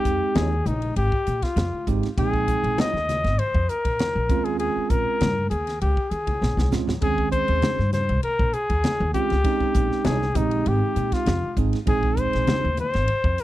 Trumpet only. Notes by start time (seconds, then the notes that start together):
Already playing: G4
0.36 G#4
0.67 D#4
0.97 G4
1.43 F4
2.18 G#4
2.80 D#5
3.39 C5
3.69 A#4
4.44 G#4
4.59 G#4
4.90 A#4
5.50 G#4
5.81 G4
6.10 G#4
7.02 G#4
7.32 C5
7.93 C5
8.24 A#4
8.54 G#4
9.14 G4
10.05 G#4
10.36 D#4
10.68 G4
11.13 F4
11.88 G#4
12.19 C5
12.80 C5
13.41 A#4